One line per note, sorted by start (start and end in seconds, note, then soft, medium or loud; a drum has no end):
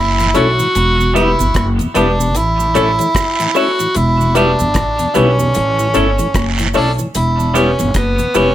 0.00 0.32 F#1 medium
0.00 0.37 E4 loud
0.19 0.28 A2 medium
0.19 0.28 E3 soft
0.19 closed hi-hat medium
0.19 cabasa medium
0.34 0.58 B1 medium
0.34 0.50 A3 medium
0.34 0.48 A3 medium
0.34 0.48 C#4 medium
0.34 0.51 C#4 medium
0.34 0.50 E4 medium
0.34 0.48 E4 medium
0.34 0.51 E4 medium
0.34 1.16 F#4 loud
0.34 0.51 A4 medium
0.34 0.51 C#5 medium
0.34 closed hi-hat medium
0.34 cabasa medium
0.59 0.68 A2 medium
0.59 0.68 E3 medium
0.59 closed hi-hat soft
0.59 cabasa medium
0.75 1.36 E1 loud
0.75 closed hi-hat loud
0.75 cabasa medium
0.99 1.08 E2 medium
0.99 1.08 B2 medium
0.99 cabasa soft
1.14 1.30 G3 medium
1.14 1.28 G3 medium
1.14 1.30 B3 medium
1.14 1.28 B3 medium
1.14 1.30 E4 loud
1.14 1.31 E4 medium
1.14 1.28 E4 medium
1.14 1.67 E4 medium
1.14 1.31 G4 medium
1.14 1.31 G4 loud
1.14 1.31 B4 medium
1.14 closed hi-hat medium
1.14 cabasa soft
1.39 1.54 G1 medium
1.39 1.48 E2 medium
1.39 1.48 B2 medium
1.39 closed hi-hat soft
1.39 cabasa medium
1.54 1.78 F#1 medium
1.54 kick loud
1.54 cross-stick loud
1.54 closed hi-hat medium
1.54 cabasa medium
1.79 1.88 E2 medium
1.79 1.88 B2 medium
1.79 closed hi-hat medium
1.79 cabasa medium
1.94 2.36 E1 medium
1.94 2.10 G3 medium
1.94 2.08 G3 medium
1.94 2.11 B3 medium
1.94 2.08 B3 medium
1.94 2.38 D4 medium
1.94 2.10 E4 medium
1.94 2.08 E4 medium
1.94 2.11 E4 medium
1.94 2.11 G4 medium
1.94 2.11 B4 medium
1.94 closed hi-hat medium
1.94 cabasa medium
2.19 2.28 E2 medium
2.19 2.28 B2 medium
2.19 cabasa medium
2.35 2.73 A1 medium
2.35 3.59 E4 loud
2.35 closed hi-hat medium
2.35 cabasa medium
2.59 2.68 A2 medium
2.59 2.68 E3 medium
2.59 cabasa medium
2.74 2.98 A1 medium
2.74 2.90 A3 medium
2.74 2.88 A3 medium
2.74 2.88 C#4 medium
2.74 2.91 C#4 medium
2.74 2.90 E4 medium
2.74 2.88 E4 medium
2.74 2.91 E4 medium
2.74 2.91 A4 medium
2.74 2.91 C#5 medium
2.74 closed hi-hat medium
2.74 cabasa soft
2.99 3.08 A2 medium
2.99 3.08 E3 medium
2.99 3.05 A4 soft
2.99 3.05 C#5 soft
2.99 closed hi-hat soft
2.99 cabasa medium
3.15 kick loud
3.15 cross-stick loud
3.15 closed hi-hat medium
3.15 cabasa medium
3.15 long guiro medium
3.40 3.48 A2 medium
3.40 3.48 E3 medium
3.40 closed hi-hat soft
3.40 cabasa medium
3.55 3.70 A3 medium
3.55 3.68 A3 medium
3.55 3.68 C#4 medium
3.55 3.71 C#4 medium
3.55 3.71 E4 medium
3.55 3.69 E4 medium
3.55 3.71 E4 medium
3.55 3.98 F#4 medium
3.55 3.71 A4 medium
3.55 3.71 C#5 loud
3.55 open hi-hat medium
3.55 cabasa medium
3.79 3.88 A2 soft
3.79 3.88 E3 medium
3.79 muted clean electric guitar stroke soft
3.79 closed hi-hat medium
3.79 cabasa medium
3.95 4.56 E1 loud
3.95 4.38 E4 loud
3.95 closed hi-hat loud
3.95 cabasa medium
4.20 4.28 E2 medium
4.20 4.28 B2 medium
4.20 cabasa soft
4.34 4.48 G3 medium
4.34 4.50 G3 medium
4.34 4.48 B3 medium
4.34 4.51 B3 medium
4.34 5.18 D4 medium
4.34 4.50 E4 loud
4.34 4.48 E4 medium
4.34 4.51 E4 medium
4.34 4.51 G4 medium
4.34 4.51 G4 loud
4.34 4.51 B4 loud
4.34 closed hi-hat medium
4.34 cabasa medium
4.59 4.74 G1 medium
4.59 4.68 E2 medium
4.59 4.68 B2 medium
4.59 closed hi-hat soft
4.59 cabasa medium
4.74 4.98 A1 medium
4.74 kick loud
4.74 cross-stick medium
4.74 closed hi-hat medium
4.74 cabasa medium
4.99 5.08 E2 medium
4.99 5.08 B2 medium
4.99 closed hi-hat medium
4.99 cabasa medium
5.14 5.52 B1 loud
5.14 5.30 G3 medium
5.14 5.28 G3 medium
5.14 5.28 B3 medium
5.14 5.31 B3 medium
5.14 6.51 C#4 medium
5.14 5.30 E4 medium
5.14 5.28 E4 medium
5.14 5.31 E4 medium
5.14 5.30 G4 medium
5.14 5.31 G4 medium
5.14 5.31 B4 medium
5.14 closed hi-hat medium
5.14 cabasa medium
5.39 5.48 E2 medium
5.39 5.48 B2 medium
5.39 5.45 G4 soft
5.39 5.45 B4 soft
5.39 cabasa medium
5.54 5.93 A1 loud
5.54 closed hi-hat medium
5.54 cabasa medium
5.79 5.88 A2 medium
5.79 5.88 E3 medium
5.79 cabasa soft
5.94 6.18 G1 medium
5.94 6.08 A3 medium
5.94 6.10 A3 medium
5.94 6.08 C#4 medium
5.94 6.11 C#4 medium
5.94 6.10 E4 medium
5.94 6.08 E4 medium
5.94 6.11 E4 medium
5.94 6.10 A4 medium
5.94 6.11 A4 medium
5.94 6.11 C#5 medium
5.94 closed hi-hat medium
5.94 cabasa soft
6.19 6.28 A2 medium
6.19 6.28 E3 medium
6.19 6.25 A4 soft
6.19 6.25 C#5 soft
6.19 closed hi-hat soft
6.19 cabasa medium
6.34 6.72 F#1 medium
6.34 kick loud
6.34 cross-stick loud
6.34 closed hi-hat medium
6.34 cabasa medium
6.34 long guiro medium
6.58 6.68 A2 soft
6.58 6.68 E3 medium
6.58 closed hi-hat medium
6.58 cabasa soft
6.74 6.98 B1 medium
6.74 6.90 A3 medium
6.74 6.88 A3 medium
6.74 6.88 C#4 medium
6.74 6.91 C#4 medium
6.74 6.92 D4 medium
6.74 6.90 E4 medium
6.74 6.88 E4 medium
6.74 6.91 E4 medium
6.74 6.91 A4 medium
6.74 6.91 C#5 medium
6.74 open hi-hat medium
6.74 cabasa medium
6.99 7.08 A2 medium
6.99 7.08 E3 medium
6.99 closed hi-hat soft
6.99 cabasa medium
7.15 7.76 E1 loud
7.15 7.53 E4 medium
7.15 closed hi-hat loud
7.15 cabasa medium
7.39 7.48 E2 medium
7.39 7.48 B2 medium
7.39 cabasa soft
7.54 7.70 G3 medium
7.54 7.68 G3 medium
7.54 7.70 B3 loud
7.54 7.68 B3 medium
7.54 7.98 C#4 medium
7.54 7.70 E4 medium
7.54 7.68 E4 medium
7.54 7.71 E4 medium
7.54 7.71 G4 medium
7.54 7.71 G4 loud
7.54 7.71 B4 medium
7.54 closed hi-hat medium
7.54 cabasa medium
7.79 7.94 G1 medium
7.79 7.88 E2 medium
7.79 7.88 B2 medium
7.79 closed hi-hat medium
7.79 cabasa medium
7.94 8.18 F#1 medium
7.94 8.38 B3 medium
7.94 kick loud
7.94 cross-stick loud
7.94 closed hi-hat medium
7.94 cabasa medium
8.19 8.28 E2 medium
8.19 8.28 B2 medium
8.19 closed hi-hat medium
8.19 cabasa medium
8.34 8.55 E1 medium
8.34 8.50 G3 medium
8.34 8.48 G3 medium
8.34 8.51 B3 medium
8.34 8.49 B3 medium
8.34 8.55 C#4 loud
8.34 8.51 E4 medium
8.34 8.49 E4 medium
8.34 8.51 E4 medium
8.34 8.51 G4 medium
8.34 8.51 B4 loud
8.34 closed hi-hat medium
8.34 cabasa medium